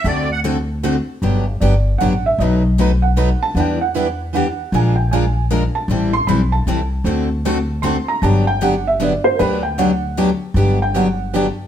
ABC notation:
X:1
M:3/4
L:1/16
Q:"Swing" 1/4=154
K:G
V:1 name="Felt piano"
z12 | z4 d4 f2 e2 | ^d4 z2 f4 a2 | [fg]2 f4 z2 f4 |
_a2 g2 a4 z2 =a2- | a2 c'2 b2 a4 z2 | z8 c'2 _b2 | a2 g2 f2 e2 d2 c2 |
[_B=B]2 g2 f4 z4 | z2 g2 f4 z4 |]
V:2 name="Accordion"
d2 f2 z8 | z12 | z12 | z12 |
z12 | z12 | z12 | z12 |
z12 | z12 |]
V:3 name="Steel-string acoustic guitar"
[D,A,CFA]2 z2 [D,A,CFA] z3 [D,A,CFA] z3 | [D,F,B,DG]2 z2 [D,F,B,DG] z3 [D,F,B,DG] z3 | [B,,F,A,^DFB]2 z2 [B,,F,A,DFB] z3 [B,,F,A,DFB] z3 | [E,G,DEB]2 z2 [E,G,DEB] z3 [E,G,DEB] z3 |
[=F,_A,D=F_B]2 z2 [F,A,DFB] z3 [F,A,DFB] z3 | [E,G,CEA]2 z2 [E,G,CEA] z3 [E,G,CEA] z3 | [D,A,CFA]2 z2 [D,A,CFA] z3 [D,A,CFA] z3 | [D,F,B,DG]2 z2 [D,F,B,DG] z3 [D,F,B,DG] z3 |
[D,F,B,DG]2 z2 [D,F,B,DG] z3 [D,F,B,DG] z3 | [D,F,B,DG]2 z2 [D,F,B,DG] z3 [D,F,B,DG] z3 |]
V:4 name="Steel-string acoustic guitar"
[D,A,CFA]2 z2 [D,A,CFA] z3 [D,A,CFA] z3 | [D,F,B,DG]2 z2 [D,F,B,DG] z3 [D,F,B,DG] z3 | [B,,F,A,^DF]2 z2 [B,,F,A,DF] z3 [B,,F,A,DF] z3 | [E,B,DG]2 z2 [E,B,DG] z3 [E,B,DG] z3 |
[=F,_A,D=F_B]2 z2 [F,A,DFB] z3 [F,A,DFB] z3 | [E,G,CEA]2 z2 [E,G,CEA] z3 [E,G,CEA] z3 | [D,A,CFA]2 z2 [D,A,CFA] z3 [D,A,CFA] z3 | [D,F,B,DG]2 z2 [D,F,B,DG] z3 [D,F,B,DG] z3 |
[D,F,B,DG]2 z2 [D,F,B,DG] z3 [D,F,B,DG] z3 | [D,F,B,DG]2 z2 [D,F,B,DG] z3 [D,F,B,DG] z3 |]
V:5 name="Upright bass" clef=bass
D,,12 | G,,,4 G,,,4 A,,,4 | B,,,12 | E,,12 |
_B,,,12 | A,,,4 B,,,4 C,,4 | D,,12 | G,,,12 |
D,,12 | G,,,12 |]